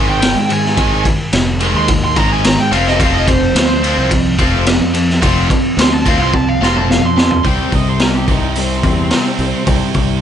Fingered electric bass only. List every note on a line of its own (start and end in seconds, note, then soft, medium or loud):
0.00 0.34 G#1 medium
0.35 0.75 G#2 medium
0.77 1.04 G#1 loud
1.33 1.72 F1 medium
1.74 2.14 D#2 medium
2.16 2.56 G#1 medium
2.58 2.71 G#2 medium
2.72 3.51 F1 medium
3.55 3.95 D2 medium
3.97 4.36 C2 medium
4.38 4.78 F1 medium
4.80 5.20 F2 medium
5.22 5.48 F1 loud
5.77 6.17 D2 loud
6.18 6.58 C2 medium
6.61 7.00 F1 medium
7.02 7.42 F2 medium
7.45 7.58 C2 medium
7.72 8.38 C2 medium
8.42 8.81 C2 medium
8.84 9.10 E2 medium
9.39 9.52 C2 medium
9.67 9.80 C2 medium
9.95 10.21 C2 medium